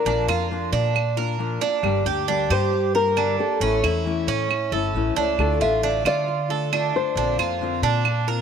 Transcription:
0.00 0.47 A#4 medium
0.05 0.27 A#1 medium
0.05 0.27 F3 medium
0.05 0.28 A#3 medium
0.05 0.28 D4 medium
0.05 0.27 F4 medium
0.28 0.70 F2 medium
0.28 0.50 A#3 soft
0.28 0.50 D4 soft
0.28 0.49 F4 soft
0.28 0.71 F4 medium
0.28 claves medium
0.51 0.93 F3 medium
0.51 0.94 A#3 medium
0.51 0.94 D4 medium
0.51 0.94 F4 medium
0.72 1.57 A#2 medium
0.72 1.16 D4 medium
0.94 muted steel-string acoustic guitar stroke medium
0.94 claves medium
1.17 1.38 A#3 soft
1.17 1.39 D4 soft
1.17 1.38 F4 soft
1.17 1.60 A#4 medium
1.39 1.60 F3 medium
1.39 1.61 A#3 medium
1.39 1.61 D4 medium
1.39 1.60 F4 medium
1.61 1.83 A#3 soft
1.61 2.05 D4 medium
1.61 1.83 D4 soft
1.61 1.83 F4 soft
1.83 2.05 G1 loud
1.83 2.05 D3 medium
1.83 2.05 G3 medium
1.83 2.05 A#3 medium
1.83 2.05 D4 medium
1.83 2.04 G4 medium
1.83 claves medium
2.05 2.48 D2 medium
2.05 2.28 A#3 soft
2.05 2.28 D4 soft
2.05 2.27 G4 soft
2.05 2.28 G4 medium
2.28 2.71 D3 medium
2.28 2.72 G3 medium
2.28 2.72 A#3 medium
2.28 2.50 D4 medium
2.28 2.72 D4 medium
2.28 2.72 G4 medium
2.50 3.35 G2 medium
2.50 2.94 G4 medium
2.50 2.93 C5 loud
2.50 claves medium
2.72 muted steel-string acoustic guitar stroke soft
2.95 3.16 A#3 soft
2.95 3.17 D4 soft
2.95 3.16 G4 soft
2.95 3.16 A#4 medium
2.95 3.40 A#4 loud
3.16 3.38 D3 medium
3.16 3.38 G3 medium
3.16 3.39 A#3 medium
3.16 3.60 D4 medium
3.16 3.39 D4 medium
3.16 3.38 G4 medium
3.16 claves medium
3.39 3.61 A#3 soft
3.39 3.61 D4 soft
3.39 3.60 G4 soft
3.39 3.86 A4 medium
3.60 3.82 A1 medium
3.60 3.83 E3 medium
3.60 3.83 A3 medium
3.60 3.83 C#4 medium
3.60 3.82 E4 medium
3.83 4.26 E2 medium
3.83 4.05 A3 soft
3.83 4.05 C#4 soft
3.83 4.05 E4 soft
3.83 5.13 E4 medium
3.83 4.27 E4 medium
3.83 claves medium
4.05 4.49 E3 medium
4.05 4.49 A3 medium
4.05 4.50 C#4 medium
4.05 4.50 E4 medium
4.27 4.70 A2 medium
4.27 4.71 C#4 medium
4.50 muted steel-string acoustic guitar stroke medium
4.50 claves medium
4.72 4.92 G1 medium
4.72 4.94 A3 soft
4.72 4.94 C#4 soft
4.72 4.94 E4 soft
4.72 5.15 A4 medium
4.94 5.14 A1 medium
4.94 5.16 E3 medium
4.94 5.16 A3 medium
4.94 5.16 C#4 medium
4.94 5.15 E4 medium
5.16 5.37 C#2 medium
5.16 5.38 A3 soft
5.16 5.39 C#4 soft
5.16 5.60 D4 medium
5.16 5.38 E4 soft
5.38 5.60 D2 medium
5.38 5.60 D3 medium
5.38 5.60 A3 medium
5.38 5.60 D4 medium
5.38 5.59 F4 medium
5.38 5.60 A4 medium
5.38 claves medium
5.60 6.03 A1 medium
5.60 5.82 A3 soft
5.60 5.83 D4 soft
5.60 5.82 F4 soft
5.60 5.83 F4 medium
5.60 6.03 E5 medium
5.82 6.26 D3 medium
5.82 6.27 A3 medium
5.82 6.05 D4 medium
5.82 6.27 D4 medium
5.82 6.27 F4 medium
6.05 6.90 D3 medium
6.05 6.49 F4 medium
6.05 6.91 D5 medium
6.05 claves medium
6.27 muted steel-string acoustic guitar stroke soft
6.49 6.71 A3 soft
6.49 6.72 D4 soft
6.49 6.71 F4 soft
6.49 6.72 A4 medium
6.72 6.93 D3 medium
6.72 6.94 A3 medium
6.72 7.16 D4 medium
6.72 6.94 D4 medium
6.72 6.93 F4 medium
6.72 claves medium
6.94 7.16 A3 soft
6.94 7.16 D4 soft
6.94 7.16 F4 soft
6.94 7.80 C5 medium
7.16 7.37 A#1 medium
7.16 7.38 D3 medium
7.16 7.38 A#3 medium
7.16 7.38 C4 medium
7.16 7.38 D4 medium
7.16 7.37 F4 medium
7.38 7.81 F2 medium
7.38 7.61 A#3 soft
7.38 7.60 C4 soft
7.38 7.60 F4 soft
7.38 7.82 F4 medium
7.38 claves medium
7.61 8.05 D3 medium
7.61 8.05 A#3 medium
7.61 8.05 C4 medium
7.61 8.06 F4 medium
7.82 8.41 A#2 medium
7.82 8.26 D4 medium
8.05 muted steel-string acoustic guitar stroke soft
8.05 claves medium
8.27 8.41 A#3 soft
8.27 8.41 C4 soft
8.27 8.41 F4 soft
8.27 8.41 A#4 medium

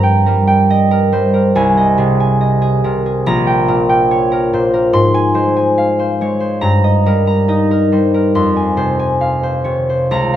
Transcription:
0.00 1.58 G2 medium
0.00 0.25 A#4 medium
0.00 0.46 G5 medium
0.00 1.58 A#5 medium
0.26 1.11 G3 soft
0.26 0.90 A#4 soft
0.47 1.58 G5 medium
0.70 1.76 D#5 medium
0.91 1.32 A#4 medium
1.12 1.58 G3 soft
1.12 1.48 C5 soft
1.34 1.58 A#4 medium
1.55 3.29 C2 medium
1.55 2.19 G#5 medium
1.77 2.40 D#5 medium
1.98 2.83 C3 medium
1.98 2.60 G#4 medium
2.20 3.29 G#5 medium
2.41 3.29 D#5 medium
2.62 3.05 G#4 medium
2.84 3.29 C3 soft
2.84 3.19 A#4 medium
3.06 3.29 G#4 medium
3.26 4.98 A#1 medium
3.26 4.98 A#5 medium
3.47 3.88 G5 medium
3.68 4.52 A#2 medium
3.68 4.30 A#4 medium
3.89 4.97 G5 medium
4.11 4.98 C#5 medium
4.32 4.72 A#4 medium
4.53 4.98 A#2 soft
4.53 4.88 C5 soft
4.73 4.97 A#4 medium
4.93 6.66 G#2 medium
4.93 6.66 C6 medium
5.14 5.55 G#5 medium
5.34 6.20 G#3 medium
5.34 5.98 C5 medium
5.56 6.66 G#5 medium
5.78 6.66 F5 medium
5.99 6.39 C5 medium
6.21 6.67 G#3 soft
6.21 6.57 C#5 soft
6.40 6.66 C5 medium
6.61 8.39 G2 medium
6.61 7.26 A#5 medium
6.84 7.47 D#5 medium
7.06 7.91 G3 medium
7.06 7.70 A#4 medium
7.27 8.39 A#5 medium
7.48 8.39 D#4 medium
7.48 8.39 D#5 medium
7.71 8.13 A#4 medium
7.92 8.39 G3 soft
7.92 8.29 C5 soft
8.14 8.39 A#4 medium
8.35 10.13 F2 medium
8.35 10.13 C6 medium
8.56 8.98 G#5 medium
8.77 9.64 C3 medium
8.77 9.42 C5 medium
8.99 10.13 G#5 medium
9.21 10.32 F5 medium
9.43 9.88 C5 soft
9.64 10.14 C3 soft
9.64 10.03 C#5 soft
9.89 10.15 C5 soft
10.11 10.36 C#2 medium
10.11 10.36 A#5 medium

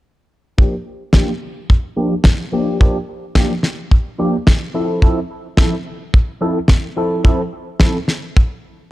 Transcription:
0.58 0.74 F3 medium
0.58 0.74 A#3 medium
0.58 0.74 D4 medium
0.58 0.74 G4 medium
0.58 kick loud
1.13 1.29 F3 medium
1.13 1.30 A#3 medium
1.13 1.30 D4 medium
1.13 1.30 G4 medium
1.13 kick loud
1.13 snare loud
1.70 kick loud
1.96 2.13 F3 medium
1.96 2.13 A#3 medium
1.96 2.13 D4 medium
1.96 2.13 G4 medium
2.24 kick loud
2.24 snare loud
2.52 2.77 F3 medium
2.52 2.77 A#3 medium
2.52 2.77 D4 medium
2.52 2.78 G4 medium
2.80 2.96 F3 medium
2.80 2.96 A#3 medium
2.80 2.97 D4 medium
2.80 2.97 G4 medium
2.80 kick loud
3.35 3.52 F3 medium
3.35 3.52 A#3 medium
3.35 3.52 D4 medium
3.35 3.52 G4 medium
3.35 kick loud
3.35 snare loud
3.63 snare medium
3.92 kick loud
4.18 4.35 F3 medium
4.18 4.35 A#3 medium
4.18 4.35 D4 medium
4.18 4.35 G4 medium
4.47 kick loud
4.47 snare loud
4.74 4.99 F3 medium
4.74 4.99 C4 medium
4.74 4.99 E4 medium
4.74 5.00 A4 medium
5.02 5.18 F3 medium
5.02 5.18 C4 medium
5.02 5.19 E4 medium
5.02 5.19 A4 medium
5.02 kick loud
5.57 5.74 F3 medium
5.57 5.74 C4 medium
5.57 5.74 E4 medium
5.57 5.74 A4 medium
5.57 kick loud
5.57 snare loud
6.14 kick loud
6.41 6.57 F3 medium
6.41 6.57 C4 medium
6.41 6.58 E4 medium
6.41 6.58 A4 medium
6.68 kick loud
6.68 snare medium
6.96 7.21 F3 medium
6.96 7.22 C4 medium
6.96 7.22 E4 medium
6.96 7.22 A4 medium
7.24 7.41 F3 medium
7.24 7.41 C4 medium
7.24 7.41 E4 medium
7.24 7.41 A4 medium
7.24 kick loud
7.80 7.96 F3 medium
7.80 7.96 C4 medium
7.80 7.96 E4 medium
7.80 7.97 A4 medium
7.80 kick loud
7.80 snare loud
8.08 snare medium
8.37 kick loud

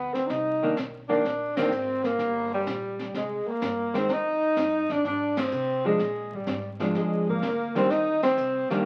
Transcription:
0.00 0.28 D2 medium
0.00 0.15 B3 medium
0.14 0.29 C4 medium
0.14 0.32 C4 medium
0.14 snare soft
0.27 0.75 C2 medium
0.27 0.74 D#4 medium
0.27 0.75 D#4 medium
0.27 brush sweep soft
0.27 kick soft
0.27 snare soft
0.63 0.76 D#3 medium
0.63 0.76 A#3 medium
0.63 0.76 D4 medium
0.77 1.23 B1 medium
0.77 kick soft
0.77 snare medium
0.77 hi-hat pedal soft
1.09 1.23 D#3 medium
1.09 1.23 A#3 medium
1.09 1.58 D4 medium
1.09 1.23 D4 medium
1.09 1.61 D4 medium
1.24 1.70 A#1 medium
1.24 brush sweep soft
1.24 kick soft
1.24 snare soft
1.57 1.71 D#3 medium
1.57 1.71 A#3 medium
1.57 2.05 C4 medium
1.57 2.07 C4 medium
1.57 1.71 D4 medium
1.57 snare medium
1.57 ride medium
1.71 2.17 G#1 medium
1.71 hi-hat pedal medium
2.03 2.51 A#3 medium
2.03 2.52 A#3 loud
2.03 snare soft
2.19 2.65 G1 medium
2.19 brush sweep soft
2.19 kick soft
2.19 snare soft
2.54 3.11 G3 medium
2.54 3.12 G3 medium
2.66 3.13 A#1 medium
2.66 kick soft
2.66 snare medium
2.66 hi-hat pedal medium
2.99 snare soft
3.14 3.44 C2 medium
3.14 3.49 G#3 medium
3.14 3.52 G#3 medium
3.14 brush sweep soft
3.14 kick soft
3.14 snare soft
3.47 3.97 A#3 medium
3.47 muted upright bass stroke soft
3.51 3.99 A#3 medium
3.61 4.08 G2 medium
3.61 kick soft
3.61 snare medium
3.61 hi-hat pedal medium
3.94 4.08 D#3 soft
3.94 4.08 G#3 medium
3.94 4.08 C4 medium
3.94 4.11 C4 medium
3.94 4.15 C4 loud
3.94 snare soft
4.09 4.55 F2 medium
4.09 4.92 D#4 medium
4.09 brush sweep soft
4.09 kick soft
4.09 snare soft
4.13 4.93 D#4 loud
4.56 4.87 G2 medium
4.56 kick soft
4.56 snare medium
4.56 hi-hat pedal medium
4.89 5.05 D4 medium
4.89 5.06 D4 medium
4.89 muted upright bass stroke soft
4.89 kick medium
4.89 snare soft
5.04 5.50 G#2 medium
5.04 5.39 D4 medium
5.04 5.42 D4 medium
5.04 brush sweep soft
5.04 snare soft
5.37 5.85 C4 medium
5.37 5.86 C4 medium
5.37 snare medium
5.37 ride medium
5.51 5.98 C3 medium
5.51 hi-hat pedal medium
5.85 5.98 F3 medium
5.85 6.35 G#3 medium
5.85 5.99 G#3 medium
5.85 6.37 G#3 medium
5.85 5.99 D4 medium
5.99 6.45 A#2 medium
5.99 brush sweep soft
5.99 kick soft
5.99 snare soft
6.32 6.76 G3 medium
6.32 6.77 G3 medium
6.32 kick soft
6.46 6.93 G#2 medium
6.46 snare medium
6.46 hi-hat pedal soft
6.80 7.40 F3 medium
6.80 7.40 G#3 medium
6.80 7.40 D4 medium
6.80 snare soft
6.95 7.41 F2 medium
6.95 7.25 G#3 medium
6.95 7.26 G#3 medium
6.95 brush sweep soft
6.95 kick soft
6.95 snare soft
7.27 7.73 A#3 medium
7.27 kick medium
7.42 7.88 D2 medium
7.42 snare medium
7.42 hi-hat pedal soft
7.75 7.89 D#3 medium
7.75 7.89 G3 medium
7.75 7.89 A#3 medium
7.75 7.93 C4 medium
7.75 7.92 C4 loud
7.75 7.89 D4 medium
7.75 snare soft
7.89 8.36 D#2 medium
7.89 8.23 D#4 loud
7.89 8.23 D#4 medium
7.89 brush sweep soft
7.89 kick soft
7.89 snare soft
8.22 8.67 C4 loud
8.22 8.68 C4 medium
8.22 snare medium
8.22 ride medium
8.37 8.68 C2 medium
8.37 hi-hat pedal medium
8.69 8.85 D#3 medium
8.69 8.85 G3 medium
8.69 8.85 A#3 loud
8.69 8.85 A#3 medium
8.69 8.85 D4 medium
8.69 muted upright bass stroke soft
8.69 snare soft

